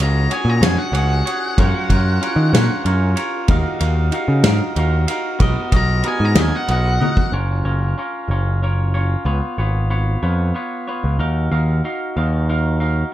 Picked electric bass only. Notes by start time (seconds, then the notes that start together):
Already playing: C#2
0.45 A#2
0.61 F2
0.92 C#2
1.58 F#2
1.89 F#2
2.36 D#3
2.53 A#2
2.85 F#2
3.49 D#2
3.81 D#2
4.28 C#3
4.44 G#2
4.76 D#2
5.40 B1
5.72 B1
6.20 G#2
6.36 D#2
6.69 B1
7.32 F#1
7.64 F#1
8.28 F#1
9.25 C#2
9.58 G#1
10.23 F2
11.04 C#2
11.19 D#2
11.51 D#2
12.17 D#2